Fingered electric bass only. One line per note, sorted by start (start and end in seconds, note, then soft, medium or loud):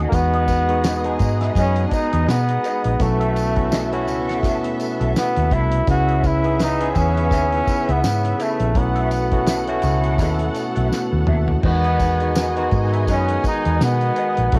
0.12 1.16 E2 loud
1.20 1.49 G#2 medium
1.56 1.85 F#2 loud
2.13 2.25 E2 medium
2.28 2.57 B2 medium
2.85 2.97 A#1 medium
3.00 4.08 B1 loud
4.08 4.43 C#2 medium
4.43 4.73 D#2 medium
5.01 5.13 B1 medium
5.37 5.49 D#2 medium
5.51 5.81 C2 loud
5.88 6.92 C#2 loud
6.96 7.31 E2 loud
7.31 7.60 D#2 medium
7.89 8.01 C#2 medium
8.04 8.33 G#2 loud
8.60 8.75 A#1 loud
8.75 9.80 B1 loud
9.84 10.19 C#2 medium
10.19 10.48 D#2 medium
10.77 10.89 B1 medium
11.13 11.25 D#2 medium
11.28 11.57 D#2 medium
11.64 12.68 E2 loud
12.72 13.07 G#2 medium
13.07 13.37 F#2 loud
13.66 13.78 E2 medium
13.81 14.10 B2 medium
14.38 14.50 A#1 medium
14.53 14.59 B1 loud